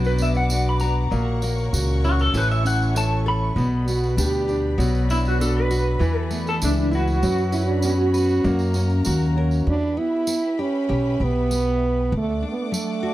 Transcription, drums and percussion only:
0.04 tambourine soft
0.18 tambourine medium
0.35 tambourine soft
0.50 tambourine medium
0.80 tambourine medium
1.12 tambourine soft
1.42 tambourine medium
1.58 tambourine soft
1.74 tambourine medium
1.89 tambourine soft
2.04 tambourine soft
2.19 tambourine soft
2.34 tambourine medium
2.51 tambourine soft
2.66 tambourine medium
2.82 tambourine soft
2.96 tambourine medium
3.58 tambourine soft
3.88 tambourine medium
4.04 tambourine soft
4.18 tambourine loud
4.33 tambourine soft
4.49 tambourine soft
4.80 tambourine medium
4.95 tambourine soft
5.10 tambourine medium
5.25 tambourine soft
5.41 tambourine loud
5.71 tambourine medium
6.01 tambourine soft
6.31 tambourine medium
6.47 tambourine soft
6.62 tambourine medium
6.93 tambourine soft
7.08 tambourine soft
7.23 tambourine medium
7.38 tambourine soft
7.52 tambourine medium
7.82 tambourine medium
8.14 tambourine medium
8.29 tambourine soft
8.44 tambourine soft
8.59 tambourine soft
8.74 tambourine medium
8.90 tambourine soft
9.05 tambourine medium
9.20 tambourine soft
9.51 tambourine soft
10.27 tambourine medium
11.51 tambourine medium
12.74 tambourine medium

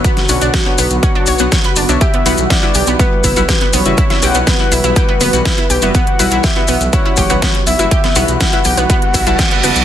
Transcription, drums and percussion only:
0.04 kick loud
0.04 closed hi-hat medium
0.04 maracas soft
0.17 snare soft
0.17 closed hi-hat soft
0.29 open hi-hat loud
0.29 maracas loud
0.41 closed hi-hat soft
0.41 maracas soft
0.54 kick loud
0.54 snare loud
0.54 closed hi-hat medium
0.54 maracas soft
0.78 open hi-hat medium
0.78 maracas loud
0.90 closed hi-hat medium
0.90 maracas medium
1.03 kick loud
1.03 closed hi-hat medium
1.03 maracas soft
1.26 open hi-hat loud
1.26 maracas loud
1.38 closed hi-hat soft
1.38 maracas medium
1.52 kick loud
1.52 snare loud
1.52 closed hi-hat medium
1.52 maracas soft
1.64 closed hi-hat soft
1.76 open hi-hat medium
1.76 maracas loud
1.89 closed hi-hat medium
1.89 maracas medium
2.01 kick loud
2.01 closed hi-hat medium
2.01 maracas soft
2.14 closed hi-hat soft
2.26 open hi-hat loud
2.26 maracas medium
2.37 closed hi-hat medium
2.37 maracas medium
2.50 kick loud
2.50 snare loud
2.50 closed hi-hat medium
2.50 maracas soft
2.74 open hi-hat medium
2.74 maracas medium
2.87 closed hi-hat medium
2.87 maracas medium
2.99 kick loud
2.99 closed hi-hat medium
2.99 maracas soft
3.24 kick medium
3.24 open hi-hat loud
3.24 maracas medium
3.36 closed hi-hat medium
3.36 maracas medium
3.49 kick loud
3.49 snare loud
3.49 closed hi-hat medium
3.49 maracas soft
3.61 closed hi-hat soft
3.73 open hi-hat medium
3.73 maracas loud
3.85 closed hi-hat medium
3.85 maracas medium
3.97 kick loud
3.97 closed hi-hat medium
3.97 maracas soft
4.10 snare soft
4.10 closed hi-hat soft
4.22 open hi-hat loud
4.22 maracas medium
4.34 closed hi-hat medium
4.34 maracas medium
4.47 kick loud
4.47 snare loud
4.47 closed hi-hat medium
4.47 maracas soft
4.72 open hi-hat medium
4.72 maracas medium
4.84 closed hi-hat medium
4.84 maracas medium
4.96 kick loud
4.96 closed hi-hat medium
4.96 maracas soft
5.20 open hi-hat loud
5.20 maracas medium
5.33 closed hi-hat medium
5.33 maracas soft
5.45 kick loud
5.45 snare loud
5.45 closed hi-hat medium
5.45 maracas soft
5.58 closed hi-hat soft
5.70 open hi-hat medium
5.70 maracas loud
5.82 closed hi-hat medium
5.82 maracas medium
5.94 kick loud
5.94 closed hi-hat medium
5.94 maracas soft
6.07 closed hi-hat soft
6.19 open hi-hat loud
6.19 maracas loud
6.31 closed hi-hat medium
6.31 maracas soft
6.43 kick loud
6.43 snare loud
6.43 closed hi-hat medium
6.43 maracas soft
6.68 open hi-hat medium
6.68 maracas medium
6.81 closed hi-hat medium
6.81 maracas medium
6.93 kick loud
6.93 closed hi-hat medium
6.93 maracas soft
7.16 kick medium
7.16 open hi-hat loud
7.16 maracas medium
7.30 closed hi-hat medium
7.30 maracas medium
7.42 kick loud
7.42 snare loud
7.42 closed hi-hat medium
7.42 maracas soft
7.55 closed hi-hat soft
7.67 open hi-hat medium
7.67 maracas medium
7.79 closed hi-hat medium
7.79 maracas soft
7.91 kick loud
7.91 closed hi-hat medium
7.91 maracas soft
8.04 snare soft
8.04 closed hi-hat soft
8.15 open hi-hat loud
8.15 maracas medium
8.28 closed hi-hat medium
8.28 maracas soft
8.40 kick loud
8.40 snare loud
8.40 closed hi-hat medium
8.40 maracas soft
8.53 closed hi-hat soft
8.64 open hi-hat medium
8.64 maracas medium
8.77 closed hi-hat medium
8.77 maracas medium
8.90 kick loud
8.90 closed hi-hat medium
8.90 maracas soft
9.02 closed hi-hat soft
9.14 kick medium
9.14 open hi-hat loud
9.14 maracas medium
9.27 closed hi-hat medium
9.27 maracas medium
9.38 kick loud
9.38 snare loud
9.38 closed hi-hat medium
9.38 maracas soft
9.51 closed hi-hat soft
9.63 open hi-hat medium
9.63 maracas loud
9.76 closed hi-hat medium
9.76 maracas soft

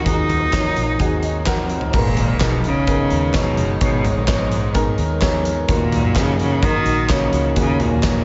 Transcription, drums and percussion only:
0.06 kick loud
0.06 closed hi-hat loud
0.30 closed hi-hat medium
0.30 floor tom medium
0.53 kick loud
0.53 snare loud
0.53 clap medium
0.53 closed hi-hat medium
0.76 closed hi-hat medium
0.99 kick loud
0.99 closed hi-hat medium
1.23 closed hi-hat medium
1.46 kick loud
1.46 snare loud
1.46 clap medium
1.46 closed hi-hat medium
1.69 closed hi-hat medium
1.81 floor tom medium
1.93 kick loud
1.93 crash loud
2.17 closed hi-hat medium
2.17 floor tom medium
2.41 kick loud
2.41 snare loud
2.41 clap loud
2.41 closed hi-hat medium
2.64 closed hi-hat medium
2.87 kick loud
2.87 closed hi-hat medium
3.10 closed hi-hat medium
3.34 kick loud
3.34 snare loud
3.34 clap medium
3.34 closed hi-hat medium
3.57 closed hi-hat medium
3.81 kick loud
3.81 closed hi-hat loud
4.05 closed hi-hat medium
4.05 floor tom medium
4.28 kick loud
4.28 snare loud
4.28 clap medium
4.28 closed hi-hat medium
4.51 closed hi-hat medium
4.75 kick loud
4.75 closed hi-hat medium
4.98 closed hi-hat medium
5.22 kick loud
5.22 snare loud
5.22 clap loud
5.22 closed hi-hat medium
5.45 closed hi-hat medium
5.68 kick loud
5.68 closed hi-hat loud
5.92 closed hi-hat medium
5.92 floor tom medium
6.16 kick loud
6.16 snare loud
6.16 clap medium
6.16 closed hi-hat medium
6.39 closed hi-hat medium
6.63 kick loud
6.63 closed hi-hat medium
6.86 closed hi-hat medium
7.09 kick loud
7.09 snare loud
7.09 clap medium
7.09 closed hi-hat medium
7.33 closed hi-hat medium
7.56 kick loud
7.56 closed hi-hat loud
7.80 closed hi-hat medium
7.80 floor tom medium
8.03 kick loud
8.03 snare loud
8.03 clap medium
8.03 closed hi-hat medium

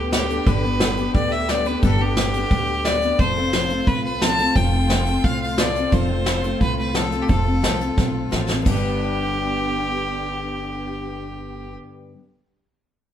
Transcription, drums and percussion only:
0.12 snare loud
0.12 closed hi-hat medium
0.30 closed hi-hat medium
0.47 kick loud
0.47 closed hi-hat medium
0.80 snare loud
0.80 closed hi-hat medium
0.97 closed hi-hat medium
1.14 kick loud
1.14 closed hi-hat soft
1.49 snare loud
1.49 closed hi-hat medium
1.66 closed hi-hat medium
1.82 kick loud
1.82 closed hi-hat medium
2.17 snare loud
2.17 closed hi-hat medium
2.33 closed hi-hat medium
2.51 kick loud
2.51 closed hi-hat medium
2.85 snare loud
2.85 closed hi-hat medium
3.02 closed hi-hat medium
3.19 kick loud
3.19 closed hi-hat soft
3.53 snare loud
3.53 closed hi-hat medium
3.70 closed hi-hat medium
3.87 kick medium
3.87 closed hi-hat soft
4.22 snare loud
4.22 closed hi-hat medium
4.39 closed hi-hat medium
4.56 kick loud
4.56 closed hi-hat medium
4.90 snare loud
4.90 closed hi-hat medium
5.06 closed hi-hat medium
5.24 kick medium
5.24 closed hi-hat medium
5.58 snare loud
5.58 closed hi-hat medium
5.76 closed hi-hat medium
5.92 kick loud
5.92 closed hi-hat medium
6.26 snare loud
6.26 closed hi-hat medium
6.44 closed hi-hat medium
6.61 kick medium
6.61 closed hi-hat medium
6.95 snare loud
6.95 closed hi-hat medium
7.12 closed hi-hat medium
7.29 kick loud
7.29 closed hi-hat medium
7.64 snare loud
7.64 closed hi-hat medium
7.81 closed hi-hat medium
7.98 kick loud
7.98 snare medium
8.32 snare medium
8.49 snare medium
8.66 kick loud
8.66 crash medium

